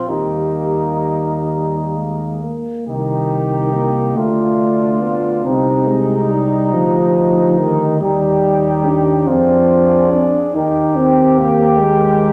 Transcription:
Already playing: flugelhorn F4
0.06 tuba D#2, euphonium G3, trombone section A#3, flugelhorn D#4, french horn section G4
1.50 euphonium G3
1.96 euphonium G#3
2.43 euphonium A#3
2.87 tuba C2, euphonium D#3, trombone section D#4, french horn section D#4, flugelhorn G4
3.74 euphonium A#3
4.15 tuba D2, euphonium A3, trombone section D4, french horn section F4, flugelhorn F4
5.01 euphonium B3
5.44 tuba C2, euphonium C4, trombone section D#4, flugelhorn D#4, french horn section G4
5.87 euphonium G#3
6.30 euphonium G3
6.73 tuba D2, euphonium F3
7.59 euphonium D#3
8.00 tuba D#2, euphonium G3, trombone section D#4, french horn section G4, flugelhorn G4
8.85 euphonium D4
9.27 tuba F2, euphonium C4, trombone section D4, flugelhorn F4, french horn section G#4
10.11 euphonium D4
10.54 tuba D#2, euphonium D#4, trombone section G4, flugelhorn G4, french horn section A#4
10.96 euphonium C4
11.38 euphonium A#3
11.78 euphonium G#3

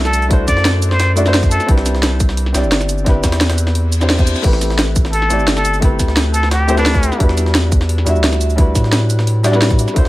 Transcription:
Already playing: sub bass C2, grand piano A3 D4 E4 F#4 E5
0.05 muted trumpet A4, snare, shaker
0.13 closed hi-hat, shaker
0.22 closed hi-hat, shaker
0.29 grand piano A3 D4 E4 F#4, kick, closed hi-hat
0.33 grand piano C5
0.48 sub bass F#2, muted trumpet D5, kick, snare, closed hi-hat, shaker
0.57 snare
0.65 snare, closed hi-hat
0.82 closed hi-hat, shaker
0.91 muted trumpet C5, snare
0.99 snare, closed hi-hat
1.16 grand piano A3 D4 E4 F#4 D5, closed hi-hat, shaker
1.24 grand piano A3 D4 E4 F#4, snare, shaker
1.28 grand piano C5
1.34 snare, closed hi-hat
1.43 kick, snare, shaker
1.51 muted trumpet A4, closed hi-hat, shaker
1.60 snare, shaker
1.66 sub bass C2, grand piano C4 D4 E4 G4, kick, closed hi-hat
1.71 grand piano B4
1.77 snare
1.86 snare, closed hi-hat, shaker
1.95 snare
2.03 snare, closed hi-hat
2.20 kick, closed hi-hat, shaker
2.29 snare
2.37 closed hi-hat
2.46 snare
2.53 sub bass C2, grand piano C4 D4 E4 G4, snare, closed hi-hat, shaker
2.57 grand piano D5
2.63 sub bass G1, shaker
2.72 snare, closed hi-hat
2.81 snare, shaker
2.89 closed hi-hat, shaker
2.98 shaker
3.04 grand piano C4 D4 E4 G4, kick, snare, closed hi-hat
3.09 grand piano B4
3.24 sub bass E2, kick, snare, closed hi-hat, shaker
3.32 snare, closed hi-hat
3.41 snare, closed hi-hat
3.50 snare, closed hi-hat
3.58 closed hi-hat, shaker
3.67 snare
3.75 closed hi-hat, reverse cymbal
3.92 closed hi-hat, shaker
4.00 grand piano C4 D4 E4 G4 C5, snare, shaker
4.10 snare, closed hi-hat
4.18 grand piano C4 D4 E4 G4 C5, kick, snare, shaker
4.27 closed hi-hat, shaker
4.36 snare, shaker
4.42 sub bass A1, grand piano A3 C4 E4 G4, kick, closed hi-hat, crash
4.46 grand piano B4
4.53 snare
4.61 snare, closed hi-hat, shaker
4.70 snare
4.79 snare, closed hi-hat
4.96 kick, closed hi-hat, shaker
5.05 snare
5.13 muted trumpet A4, closed hi-hat
5.22 snare
5.29 sub bass A1, grand piano A3 C4 E4 G4, snare, closed hi-hat, shaker
5.33 grand piano D5
5.39 sub bass G1, shaker
5.48 snare, closed hi-hat
5.57 muted trumpet A4, snare, shaker
5.65 closed hi-hat, shaker
5.74 closed hi-hat, shaker
5.80 grand piano A3 C4 E4 G4, kick, closed hi-hat
5.84 grand piano B4
5.99 sub bass D2, kick, snare, closed hi-hat, shaker
6.08 snare
6.17 snare, closed hi-hat
6.34 muted trumpet A4, closed hi-hat, shaker
6.43 snare
6.51 muted trumpet G4, snare, closed hi-hat
6.67 grand piano A3 C4 E4 G4 C5, closed hi-hat, shaker
6.75 grand piano A3 C4 E4 G4, muted trumpet D4, snare, shaker
6.80 grand piano B4
6.86 snare, closed hi-hat
6.95 kick, snare, shaker
7.03 closed hi-hat, shaker
7.12 snare, shaker
7.18 sub bass E2, grand piano G3 D4 E4 F#4, kick, closed hi-hat
7.22 grand piano B4
7.29 snare
7.37 snare, closed hi-hat, shaker
7.46 snare
7.55 snare, closed hi-hat
7.72 kick, closed hi-hat, shaker
7.81 snare
7.89 closed hi-hat
7.98 snare
8.04 sub bass E2, grand piano G3 D4 E4 F#4, snare, closed hi-hat, shaker
8.09 grand piano E5
8.15 sub bass D2, shaker
8.24 snare, closed hi-hat
8.33 snare, shaker
8.41 closed hi-hat, shaker
8.50 closed hi-hat, shaker
8.56 grand piano G3 D4 E4 F#4, kick, closed hi-hat
8.60 grand piano B4
8.75 sub bass A2, kick, snare, closed hi-hat, shaker
8.84 snare
8.92 snare, closed hi-hat
9.10 closed hi-hat, shaker
9.19 snare
9.27 closed hi-hat
9.43 grand piano G3 D4 E4 F#4 D5, snare, closed hi-hat, shaker
9.51 grand piano G3 D4 E4 F#4, snare, shaker
9.55 grand piano B4
9.62 snare, closed hi-hat
9.70 kick, snare, shaker
9.79 closed hi-hat, shaker
9.88 snare, shaker
9.94 sub bass D2, grand piano A3 D4 E4 F#4, kick, closed hi-hat
9.98 grand piano C5
10.05 snare

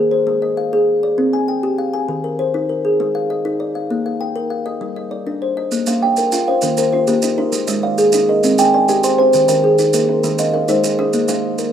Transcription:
Already playing: kalimba A#3 G#4 A#4
0.11 kalimba C5
0.27 kalimba G#3
0.42 kalimba D#5
0.57 kalimba F5
0.73 kalimba G#4
1.03 kalimba D5
1.18 kalimba C4
1.33 kalimba G#5
1.48 kalimba G5
1.63 kalimba G4
1.78 kalimba F5
1.94 kalimba G#5
2.09 kalimba D#3
2.24 kalimba A#4
2.39 kalimba C5
2.54 kalimba D#4
2.69 kalimba A#4
2.85 kalimba G#4
3.00 kalimba G#3
3.15 kalimba F5
3.30 kalimba D#5
3.45 kalimba D#4
3.60 kalimba D5
3.75 kalimba F5
3.90 kalimba A#3
4.06 kalimba F5
4.21 kalimba G5
4.36 kalimba A#4
4.50 kalimba F5
4.66 kalimba D#5
4.81 kalimba G3
4.96 kalimba D#5
5.11 kalimba D5
5.27 kalimba D4
5.42 kalimba C5
5.57 kalimba D#5
5.71 kalimba A#3, maracas
5.86 kalimba A#3 F5, maracas
6.02 kalimba D#5 G5
6.16 kalimba A#4, maracas
6.32 kalimba F4 F5, maracas
6.48 kalimba C5 F5
6.61 kalimba D#3 A#3, maracas
6.77 kalimba A#4 C5, maracas
6.93 kalimba F4 C5
7.07 kalimba D#3 A#3 G4, maracas
7.22 kalimba D#4 D#5, maracas
7.38 kalimba D#4 A#4
7.52 kalimba G#3, maracas
7.67 kalimba G#3 D#5, maracas
7.83 kalimba D5 F5
7.98 kalimba G#4, maracas
8.12 kalimba D#4 D#5, maracas
8.29 kalimba A#4 D#5
8.43 kalimba G#3 C4, maracas
8.58 kalimba G5 G#5, maracas
8.74 kalimba D5 G#5
8.88 kalimba C4 G4 D#5, maracas
9.03 kalimba C5 C6, maracas
9.18 kalimba C5 G5
9.33 kalimba D#3, maracas
9.48 kalimba D#3 A#4, maracas
9.64 kalimba G#4
9.78 kalimba D#4, maracas
9.93 kalimba A#3 A#4, maracas
10.09 kalimba A#4
10.24 kalimba D#3 G#3, maracas
10.38 kalimba D#5 F5, maracas
10.54 kalimba A#4 F5
10.68 kalimba G#3 D#4 C5, maracas
10.84 kalimba G#4, maracas
10.99 kalimba G#4 D#5
11.13 kalimba A#3, maracas
11.28 kalimba A#3 F5, maracas
11.58 kalimba A#4, maracas

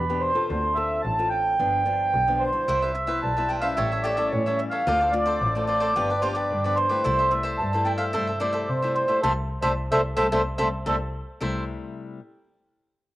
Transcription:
Already playing: double bass E2, nylon-string guitar B2, accordion B4
0.09 nylon-string guitar B3 D4 G4
0.20 accordion C5
0.35 nylon-string guitar C4 F4 A4
0.50 double bass D2, nylon-string guitar D3
0.75 nylon-string guitar C4 F4 A4, accordion E5
1.02 double bass A1, nylon-string guitar A2, accordion A5
1.19 nylon-string guitar C4 F4 A4
1.30 accordion G5
1.59 double bass G1, nylon-string guitar G2 F3 B3 D4
1.85 nylon-string guitar F3 B3 D4
2.14 double bass B1, nylon-string guitar D3
2.28 nylon-string guitar F3 B3 D4
2.40 accordion C5
2.53 nylon-string guitar G3 E4
2.68 double bass C2, nylon-string guitar C3, cavaquinho E4 B4 C5 E5
2.82 cavaquinho B4 C5 E5
2.93 accordion E5, muted cavaquinho stroke
3.07 nylon-string guitar G3 B3 E4, cavaquinho B4 C5 E5
3.22 double bass B1, nylon-string guitar G2, accordion A5
3.37 nylon-string guitar G3 B3 E4, cavaquinho B4 C5 E5
3.48 cavaquinho E4 B4 C5 E5, accordion G5
3.60 nylon-string guitar G3 C#4 E4, cavaquinho B4 C5 E5, accordion F5
3.76 double bass A1, nylon-string guitar A2, cavaquinho G4 A4 C#5 E5, accordion E5
3.92 cavaquinho A4 C#5 E5
4.02 cavaquinho G4 A4 C#5 E5, accordion D5
4.17 nylon-string guitar G3 C#4 E4, cavaquinho A4 C#5 E5
4.31 double bass A2, nylon-string guitar E3, accordion C#5
4.46 nylon-string guitar G3 C#4 E4, cavaquinho A4 C#5 E5
4.57 accordion E5, muted cavaquinho stroke
4.70 cavaquinho A4 C#5 E5, accordion F5
4.87 double bass D2, nylon-string guitar D3 A3 C4 F4, cavaquinho F4 A4 C5 D5
5.01 cavaquinho A4 C5 D5
5.12 nylon-string guitar A3 C4 F4, accordion D5, muted cavaquinho stroke
5.26 cavaquinho A4 C5 D5
5.41 double bass A1, nylon-string guitar A2
5.55 nylon-string guitar A3 C4 F4, cavaquinho A4 C5 D5
5.66 cavaquinho F4 A4 C5 D5, accordion D5
5.80 cavaquinho A4 C5 D5
5.96 double bass G1, nylon-string guitar G2 F3 B3 D4, cavaquinho F4 G4 B4 D5
6.10 cavaquinho G4 B4 D5
6.21 nylon-string guitar F3 B3 D4, cavaquinho F4 G4 B4 D5, accordion C5
6.33 cavaquinho G4 B4 D5, accordion D5
6.50 double bass G2, nylon-string guitar D3
6.64 nylon-string guitar F3 B3 D4, cavaquinho G4 B4 D5
6.75 accordion C5, muted cavaquinho stroke
6.89 nylon-string guitar G3 A3 E4, cavaquinho G4 B4 D5
7.04 double bass C2, nylon-string guitar C3, cavaquinho E4 A4 C5 E5
7.19 cavaquinho A4 C5 E5
7.30 nylon-string guitar G3 A3 E4, accordion E5, muted cavaquinho stroke
7.43 cavaquinho A4 C5 E5
7.58 double bass G2, nylon-string guitar G2, accordion A5
7.73 nylon-string guitar G3 A3 E4, cavaquinho A4 C5 E5
7.85 cavaquinho E4 A4 C5 E5, accordion G5
7.98 cavaquinho A4 C5 E5, accordion F5
8.13 double bass G2, nylon-string guitar C3 G3 A3 E4, cavaquinho E4 A4 C5 E5, accordion E5
8.27 cavaquinho A4 C5 E5
8.40 nylon-string guitar G3 A3 E4, cavaquinho E4 A4 C5 E5, accordion D5
8.53 cavaquinho A4 C5 E5
8.68 nylon-string guitar G2, double bass C3, accordion C5
8.82 nylon-string guitar G3 A3 E4, cavaquinho A4 C5 E5
8.95 accordion C5, muted cavaquinho stroke
9.08 nylon-string guitar G3 A3 E4, cavaquinho A4 C5 E5
9.23 double bass C2, nylon-string guitar G3 A3 C4, accordion A4 C5 E5, cavaquinho A4 C5 E5
9.62 double bass C2, nylon-string guitar G3 A3 C4, accordion A4 C5 E5, cavaquinho A4 C5 E5
9.92 double bass C2, nylon-string guitar G3 A3 C4, accordion A4 C5 E5, cavaquinho A4 C5 E5
10.17 double bass C2, nylon-string guitar G3 A3 C4, accordion A4 C5 E5, cavaquinho A4 C5 E5
10.32 double bass C2, nylon-string guitar G3 A3 C4, cavaquinho A4 C5 E5, accordion A4 C5 E5
10.58 double bass C2, nylon-string guitar G3 A3 C4, accordion A4 C5 E5, cavaquinho A4 C5 E5
10.86 double bass C2, nylon-string guitar G3 A3 C4, cavaquinho A4 C5 E5, accordion A4 C5 E5
11.41 double bass C2, nylon-string guitar C3 G3 A3 E4, cavaquinho E4 A4 C5 E5

